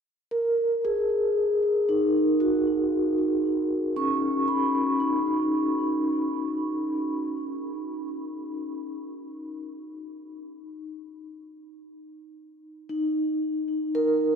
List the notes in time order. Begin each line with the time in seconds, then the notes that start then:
0.31 A#4
0.85 G#4
1.89 D#4
2.40 F#4
3.96 C#4 C#6
4.48 B5
5.00 D#4
12.89 D#4
13.95 A#4